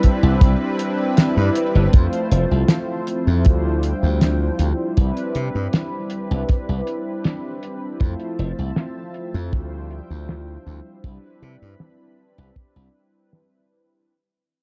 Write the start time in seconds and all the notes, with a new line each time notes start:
Already playing: G3 C4 D4 E4 B4 E5 B5
0.03 kick, closed hi-hat
0.23 C2
0.41 C2, kick, closed hi-hat
0.79 closed hi-hat
1.17 snare, closed hi-hat
1.37 G2
1.55 closed hi-hat
1.75 G1
1.92 F2 F3 A3 C4 E4 F4 C5 E5 A5, kick, closed hi-hat
2.13 closed hi-hat
2.31 F1, closed hi-hat
2.51 C2
2.68 snare, closed hi-hat
3.07 closed hi-hat
3.27 F2
3.44 D2 G3 D4 E4 F4 C5 G5, kick, closed hi-hat
3.83 closed hi-hat
4.03 D2
4.21 snare, closed hi-hat
4.59 D2, closed hi-hat
4.96 C2 G3 C4 D4 E4 B4 D5 B5, kick, closed hi-hat
5.17 closed hi-hat
5.35 C3, closed hi-hat
5.55 G2
5.73 snare, closed hi-hat
6.10 closed hi-hat
6.31 C2
6.48 kick, closed hi-hat
6.69 C2
6.87 closed hi-hat
7.24 snare, closed hi-hat
7.63 closed hi-hat
7.99 F2 F3 A3 C4 E4 F4 C5 E5 A5, kick, closed hi-hat
8.20 closed hi-hat
8.39 F1, closed hi-hat
8.59 C2
8.76 snare, closed hi-hat
9.14 closed hi-hat
9.34 F2
9.51 D2 G3 D4 E4 F4 C5 G5, kick, closed hi-hat
9.91 closed hi-hat
10.10 D2
10.29 snare, closed hi-hat
10.66 D2, closed hi-hat
11.03 C2 G3 C4 D4 E4 B4 B5, kick, closed hi-hat
11.24 closed hi-hat
11.42 C3, closed hi-hat
11.62 G2
11.80 snare, closed hi-hat
12.19 closed hi-hat
12.38 C2
12.56 kick, closed hi-hat
12.76 C2
12.94 closed hi-hat
13.32 snare, closed hi-hat